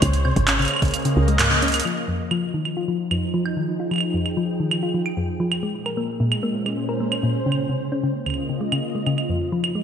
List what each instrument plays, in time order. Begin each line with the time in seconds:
Already playing: string machine C5 C#5
0.02 fm bass C#2, string machine C#3, synth arpeggio sound C#3, kick, closed hi-hat, claves
0.13 closed hi-hat
0.24 synth arpeggio sound C3, string machine A#3, claves
0.36 fm bass G#1, kick, closed hi-hat
0.48 synth arpeggio sound C#4, clap, closed hi-hat
0.59 synth arpeggio sound C#3, string machine D#5, closed hi-hat, claves
0.62 closed hi-hat, claves
0.65 closed hi-hat, claves
0.68 closed hi-hat, claves
0.71 claves
0.74 claves
0.76 claves
0.79 synth arpeggio sound C#2, kick, closed hi-hat, claves
0.84 string machine F5, closed hi-hat
0.88 closed hi-hat
0.91 closed hi-hat
0.94 closed hi-hat, claves
0.97 closed hi-hat
0.99 closed hi-hat
1.02 synth arpeggio sound C#3, closed hi-hat
1.05 closed hi-hat
1.17 fm bass C#2, synth arpeggio sound C#3
1.28 synth arpeggio sound G#3, closed hi-hat
1.39 synth arpeggio sound G#2, clap, closed hi-hat, claves
1.51 synth arpeggio sound C#3
1.62 synth arpeggio sound C#4, closed hi-hat
1.68 closed hi-hat
1.72 closed hi-hat
1.74 closed hi-hat, claves
1.76 closed hi-hat
1.80 closed hi-hat
1.83 synth arpeggio sound F3, string machine F3, closed hi-hat, claves
1.87 closed hi-hat
2.08 synth arpeggio sound F2
2.12 string machine D#4
2.31 synth arpeggio sound F3, claves
2.45 string machine G#4
2.54 synth arpeggio sound D#3
2.65 string machine G5, claves
2.77 synth arpeggio sound F4
2.88 synth arpeggio sound F3
3.11 synth arpeggio sound F2, claves
3.34 synth arpeggio sound F3
3.46 claves
3.57 synth arpeggio sound D#3
3.80 synth arpeggio sound F4
3.91 synth arpeggio sound F3, claves
3.94 claves
3.96 claves
3.98 claves
4.00 claves
4.14 synth arpeggio sound F2
4.26 claves
4.37 synth arpeggio sound F3
4.60 synth arpeggio sound D#3
4.71 claves
4.83 synth arpeggio sound F4
4.94 synth arpeggio sound F3
5.06 claves
5.17 synth arpeggio sound F2
5.40 synth arpeggio sound F3
5.52 string machine A#2, claves
5.61 string machine G#3, synth arpeggio sound G#3
5.86 string machine C#4, synth arpeggio sound A#4, claves
5.97 synth arpeggio sound A#3
6.20 synth arpeggio sound A#2
6.32 string machine C5, claves
6.43 synth arpeggio sound A#3
6.66 synth arpeggio sound G#3, claves
6.89 synth arpeggio sound A#4
7.00 synth arpeggio sound A#3
7.12 claves
7.23 synth arpeggio sound A#2
7.35 string machine C#3
7.46 synth arpeggio sound C#3
7.52 claves
7.69 synth arpeggio sound C3
7.77 string machine A#3
7.92 synth arpeggio sound C#4
8.03 synth arpeggio sound C#3
8.17 string machine F4 D#5
8.26 synth arpeggio sound C#2, claves
8.30 claves
8.34 claves
8.49 synth arpeggio sound C#3
8.61 synth arpeggio sound G#3
8.72 synth arpeggio sound C#3, claves
8.95 synth arpeggio sound G#3
9.06 synth arpeggio sound C#3, claves
9.18 string machine F3, claves
9.29 synth arpeggio sound F2
9.36 string machine D#4
9.52 synth arpeggio sound F3
9.64 claves
9.75 synth arpeggio sound G#3